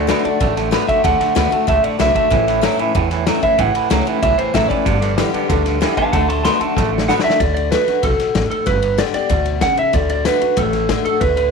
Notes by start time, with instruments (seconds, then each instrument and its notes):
Already playing: upright bass D2
0.07 steel-string acoustic guitar D3 A3 D4 F#4, clean electric guitar D3 B3 F#4 D5, snare, ride
0.24 clean electric guitar D3 A3 D5, steel-string acoustic guitar D4 F#4, muted upright bass stroke, ride
0.40 upright bass A1, clean electric guitar D3 A3, kick, snare, ride
0.57 clean electric guitar D3 A3, snare, ride
0.71 steel-string acoustic guitar D3 A3 D4 F#4, clean electric guitar D3 B3, snare, ride
0.87 clean electric guitar D3 A3 E5, steel-string acoustic guitar D4 F#4, muted upright bass stroke, kick, ride
1.04 upright bass D2, steel-string acoustic guitar D3, clean electric guitar D3 A3 F#5, kick, snare, ride
1.19 clean electric guitar D3 A3, muted upright bass stroke, snare, ride
1.35 upright bass D2, steel-string acoustic guitar D3 A3 D4 F#4, clean electric guitar D3 B3, snare, ride
1.50 clean electric guitar D3 A3, steel-string acoustic guitar D4 F#4, muted upright bass stroke, ride
1.67 upright bass C#2, steel-string acoustic guitar A2, clean electric guitar D3 A3 E5, kick, snare, ride
1.83 clean electric guitar D3 A3 D5, ride
1.99 upright bass B1, steel-string acoustic guitar D3 A3 D4 F#4, clean electric guitar D3 B3 E5, snare, ride
2.15 clean electric guitar D3 A3 E5, kick, ride
2.30 upright bass A1, steel-string acoustic guitar A2, clean electric guitar A2 E3, kick, snare, ride
2.47 clean electric guitar A2 E3, snare, ride
2.61 clean electric guitar A2 F#3, steel-string acoustic guitar E3 A3 C#4 E4, snare, ride
2.77 clean electric guitar A2 E3, steel-string acoustic guitar C#4 E4, muted upright bass stroke, ride
2.95 steel-string acoustic guitar E2, upright bass E2, clean electric guitar A2 E3, kick, ride
3.11 clean electric guitar A2 E3, snare, ride
3.26 clean electric guitar A2 F#3, steel-string acoustic guitar E3 A3 C#4 E4, snare, ride
3.42 clean electric guitar A2 E3 E5, steel-string acoustic guitar C#4 E4, muted upright bass stroke, kick, ride
3.58 upright bass A1, clean electric guitar A2 E3 F#5, steel-string acoustic guitar A2, kick, ride
3.74 clean electric guitar A2 E3, muted upright bass stroke, ride
3.90 upright bass C#2, clean electric guitar A2 F#3, steel-string acoustic guitar E3 A3 C#4 E4, snare, ride
4.06 clean electric guitar A2 E3, steel-string acoustic guitar C#4 E4, muted upright bass stroke, ride
4.22 upright bass B1, steel-string acoustic guitar E2, clean electric guitar A2 E3 E5, kick, ride
4.38 clean electric guitar A2 E3 C5, muted upright bass stroke, ride
4.54 upright bass A1, clean electric guitar A2 F#3 E5, steel-string acoustic guitar E3 A3 C#4 E4, snare, ride
4.69 clean electric guitar A2 E3 D5, steel-string acoustic guitar C#4 E4, kick, ride
4.85 upright bass G1, clean electric guitar G2 D3, steel-string acoustic guitar G2, kick, snare, ride
5.01 clean electric guitar G2 D3, snare, ride
5.17 clean electric guitar G2 E3, steel-string acoustic guitar D3 G3 B3 G4, snare, ride
5.33 clean electric guitar G2 D3, muted upright bass stroke, ride
5.49 upright bass D2, clean electric guitar G2 D3, steel-string acoustic guitar D3, kick, snare, ride
5.64 clean electric guitar G2 D3, snare, ride
5.81 clean electric guitar G2 E3, steel-string acoustic guitar D3 G3 B3 G4, snare, ride
5.97 clean electric guitar G2 D3 F5 A5, steel-string acoustic guitar B3 G4, muted upright bass stroke, kick, ride
6.13 upright bass D2, steel-string acoustic guitar D3, clean electric guitar D3 A3 F#5 A5, kick, snare, ride
6.28 clean electric guitar D3 A3 A5 C6, ride
6.43 steel-string acoustic guitar D3 A3 D4 F#4, clean electric guitar D3 B3 A5 C6, snare, ride
6.60 clean electric guitar D3 A3 A5, steel-string acoustic guitar D4 F#4, muted upright bass stroke, ride
6.76 upright bass A1, steel-string acoustic guitar A2, clean electric guitar D3 A3, kick, snare
6.92 clean electric guitar D3 A3
6.98 snare
7.08 clean electric guitar D3 B3 F#5, steel-string acoustic guitar D3 A3 D4 F#4, snare
7.19 snare
7.24 clean electric guitar D3 A3 E5, muted upright bass stroke
7.30 snare
7.40 upright bass D2, steel-string acoustic guitar D3, clean electric guitar D5, kick, snare, ride
7.54 clean electric guitar D5, ride
7.71 steel-string acoustic guitar D3 A3 D4 F#4, clean electric guitar B4, snare, ride
7.87 steel-string acoustic guitar D4 F#4, muted upright bass stroke, snare, ride
8.03 upright bass B1, steel-string acoustic guitar B2, clean electric guitar A4, kick, snare, ride
8.19 muted upright bass stroke, snare, ride
8.35 upright bass A1, steel-string acoustic guitar A2, kick, snare, ride
8.50 clean electric guitar A4, muted upright bass stroke, ride
8.66 upright bass G1, steel-string acoustic guitar G2, clean electric guitar B4, kick, snare, ride
8.82 ride
8.98 steel-string acoustic guitar D3 G3 B3 G4, clean electric guitar D5, snare, ride
9.14 steel-string acoustic guitar B3 G4, clean electric guitar D5, muted upright bass stroke, snare, ride
9.29 upright bass D2, steel-string acoustic guitar B2, kick, snare, ride
9.45 ride
9.61 steel-string acoustic guitar C#3, clean electric guitar F#5, kick, snare, ride
9.77 clean electric guitar E5, muted upright bass stroke, ride
9.93 upright bass D2, steel-string acoustic guitar D3, clean electric guitar D5, kick, snare, ride
10.09 clean electric guitar D5, ride
10.25 steel-string acoustic guitar D3 A3 D4 F#4, clean electric guitar B4, snare, ride
10.42 steel-string acoustic guitar D4 F#4, muted upright bass stroke, ride
10.57 upright bass A1, steel-string acoustic guitar A2, clean electric guitar A4, kick, snare, ride
10.73 snare, ride
10.89 steel-string acoustic guitar D3 A3 D4 F#4, kick, snare, ride
11.05 steel-string acoustic guitar D4 F#4, clean electric guitar A4, muted upright bass stroke, ride
11.21 upright bass D2, steel-string acoustic guitar D3, clean electric guitar B4, kick, ride
11.37 clean electric guitar B4, ride